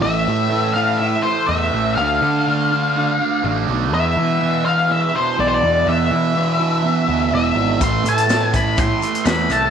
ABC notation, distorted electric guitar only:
X:1
M:4/4
L:1/8
Q:1/4=123
K:none
V:1 name="Distorted electric guitar" clef=bass
[A,,E,A,] [E,A,] [A,,E,A,] [A,,E,A,] [A,,E,A,] [E,A,] [A,,E,A,] [E,A,] | [D,A,D] [A,D] [D,A,D] [D,A,D] [D,A,D] [A,D] [D,A,D] [A,D] | [E,,B,,E,] [B,,E,] [E,,B,,E,] [E,,B,,E,] [E,,B,,E,] [B,,E,] [E,,B,,E,] [B,,E,] | [E,,B,,E,] [B,,E,] [E,,B,,E,] [E,,B,,E,] [E,,B,,E,] [B,,E,] [E,,B,,E,] [B,,E,] |
[A,,E,A,] [E,A,] [A,,E,A,] [A,,E,A,] [A,,E,A,] [E,A,] [A,,E,A,] [E,A,] |]